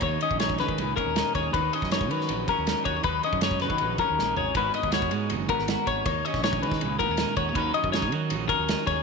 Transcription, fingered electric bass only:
X:1
M:4/4
L:1/16
Q:1/4=160
K:B
V:1 name="Fingered electric bass" clef=bass
D,,2 z A,,,3 D,2 C,,2 z D,,2 z D,,2 | D,,2 z F,,3 D,2 A,,,2 z D,,2 z D,,2 | D,,2 z F,,3 D,2 A,,,2 z D,, A,,,2 G,,,2 | G,,,2 z D,,3 G,,2 F,,,2 z G,,,2 z G,,,2 |
D,,2 z A,,,3 D,2 C,,2 z D,,2 z D,,2 | D,,2 z F,,3 D,2 A,,,2 z D,,2 z D,,2 |]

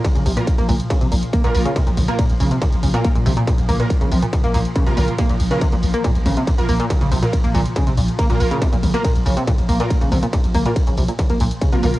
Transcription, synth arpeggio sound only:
X:1
M:4/4
L:1/16
Q:1/4=140
K:Bbm
V:1 name="Synth arpeggio sound" clef=bass
z D, C, B,, z B, B,, z D, C, B,, z B, B,, z D, | C, B,, z B, B,, z D, C, B,, z D, B,, B, B,, C, B,, | B,, z B, B,, z D, C, B,, z B, B,, z D, C, B,, z | B, B,, z D, C, B,, z B, B,, z D, C, B,, z B, B,, |
z D, C, B,, z B, B,, z D, C, B,, z B, B,, z D, | C, B,, z B, B,, z D, C, B,, z B, B,, z D, C, B,, | B,, z B, B,, z D, C, B,, z B, B,, z D, C, B,, z |]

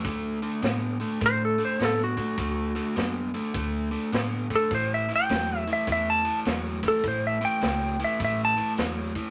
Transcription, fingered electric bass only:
X:1
M:4/4
L:1/8
Q:"Swing" 1/4=103
K:D
V:1 name="Fingered electric bass" clef=bass
D,,2 A,,2 A,,2 A,,2 | D,,2 F,,2 D,,2 A,,2 | A,,,2 E,,2 E,,2 E,,2 | A,,,2 C,,2 A,,,2 E,,2 |]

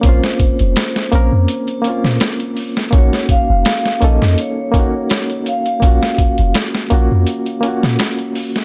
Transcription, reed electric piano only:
X:1
M:4/4
L:1/8
Q:"Swing 16ths" 1/4=83
K:Gblyd
V:1 name="Reed electric piano"
[B,CDF]3 [B,CDB]2 [B,CDF]3 | [B,DEG]3 [B,DE=A]2 [B,DEG]3 | [B,DFG]3 [B,DFG]2 [B,DFG]3 |]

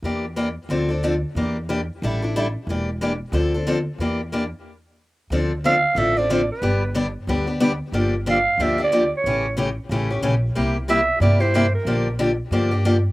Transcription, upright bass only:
X:1
M:4/4
L:1/8
Q:"Swing" 1/4=183
K:Dm
V:1 name="Upright bass" clef=bass
E,,4 D,,4 | E,,4 A,,,4 | E,,,4 D,,4 | E,,4 z4 |
D,,4 A,,,4 | G,,,4 D,,4 | G,,,4 D,,4 | A,,,4 A,,,2 B,,,2 |
C,,4 G,,4 | B,,,4 G,,4 |]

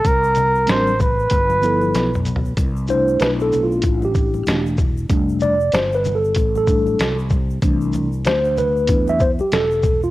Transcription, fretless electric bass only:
X:1
M:4/4
L:1/16
Q:"Swing 16ths" 1/4=95
K:C
V:1 name="Fretless electric bass" clef=bass
C,,4 A,,,4 G,,,4 B,,,4 | C,,4 B,,,4 A,,,4 E,,,4 | F,,,4 G,,,4 A,,,4 C,,4 | C,,4 D,,4 E,,3 z E,,,4 |]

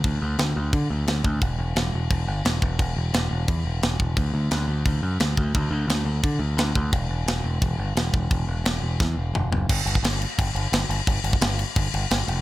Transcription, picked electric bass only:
X:1
M:4/4
L:1/8
Q:1/4=174
K:Em
V:1 name="Picked electric bass" clef=bass
D,, D,, D,, D,, D, D,, D,, D,, | E,,, E,,, E,,, E,,, E,,, G,,, E,,, E,,, | E,,, E,,, E,,, E,,, E,, E,,, E,,, E,,, | D,, D,, D,, D,, D,, F,, D,, D,, |
D,, D,, D,, D,, D, D,, D,, D,, | E,,, E,,, E,,, E,,, E,,, G,,, E,,, E,,, | E,,, E,,, E,,, E,,, E,, E,,, E,,, F,,, | [K:Flyd] G,,, G,,, G,,,2 G,,, G,,, G,,, G,,, |
G,,, G,,, G,,,2 G,,, G,,, G,,, F,,, |]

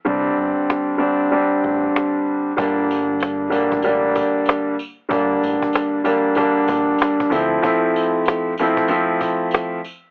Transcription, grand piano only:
X:1
M:4/4
L:1/8
Q:"Swing 16ths" 1/4=95
K:Gdor
V:1 name="Grand piano"
[D,G,CD]3 [D,G,CD] [D,G,CD]4 | [D,G,B,D]3 [D,G,B,D] [D,G,B,D]3 z | [D,G,B,D]3 [D,G,B,D] [D,G,B,D]3 [F,A,CE] | [F,A,CE]3 [F,A,CE] [F,A,CE]3 z |]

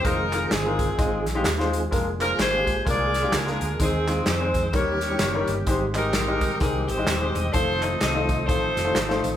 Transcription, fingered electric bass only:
X:1
M:4/4
L:1/8
Q:"Swing" 1/4=128
K:Ab
V:1 name="Fingered electric bass" clef=bass
F,,,2 G,,,2 A,,, B,,, E,,2 | F,,,2 A,,,2 C,,2 D,, =D,, | E,,2 F,,2 E,,2 _G,,, =G,,, | A,,,2 B,,,2 C,, A,,, E,,, _F,,, |
F,,,2 C,,2 =A,,, F,,, _A,,, =A,,, |]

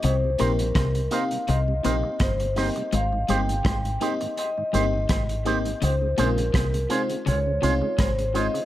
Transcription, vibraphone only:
X:1
M:4/4
L:1/8
Q:"Swing 16ths" 1/4=83
K:Ab
V:1 name="Vibraphone"
c B2 f e2 c e | f g2 e e4 | c B2 c d2 c e |]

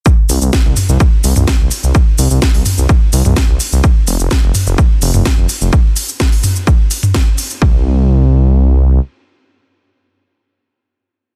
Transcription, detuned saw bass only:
X:1
M:4/4
L:1/16
Q:1/4=127
K:Fmix
V:1 name="Detuned saw bass" clef=bass
z2 C,, C,, z C,, z C,, z2 C,, C,, z C,, z C,, | z2 C,, C,, z C,, z C,, z2 C,, C,, z C,, z C,, | z2 F,,, F,,, z F,,, z F,,, z2 F,,, F,,, z F,,, z F,,, | z16 |
C,,12 z4 | z16 |]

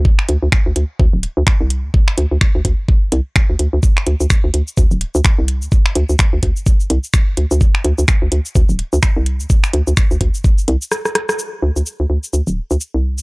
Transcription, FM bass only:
X:1
M:4/4
L:1/16
Q:"Swing 16ths" 1/4=127
K:Cmix
V:1 name="FM bass" clef=bass
z2 D,, D,, z D,, D,, z D,, D,,, z D,, z C,,2 D,, | z2 D,, D,, z D,, D,, z3 C,, z2 D,, D,, D,, | z2 D,, D,, z D,, D,, z D,, D,,, z D,, z C,,2 D,, | z2 D,, D,, z D,, D,, z3 C,, z3 D,, D,, |
z2 D,, D,, z D,, D,, z D,, D,,, z D,, z C,,2 D,, | z2 D,, D,, z D,, D,, z3 C,, z4 z | z2 D,, D,, z D,, D,, z D,, D,,, z D,, z C,,2 D,, |]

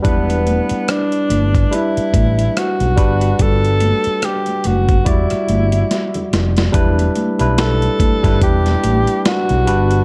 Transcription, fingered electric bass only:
X:1
M:4/4
L:1/16
Q:"Swing 16ths" 1/4=72
K:Em
V:1 name="Fingered electric bass" clef=bass
E,,,3 z3 G,,,2 z2 A,,,2 z B,,, G,,,2 | G,,,3 z3 F,,,2 E,,, z G,,,2 z2 =F,,,2 | E,,,2 z B,,,3 z G,,, E,,,2 A,,, z2 B,,, G,,,2 |]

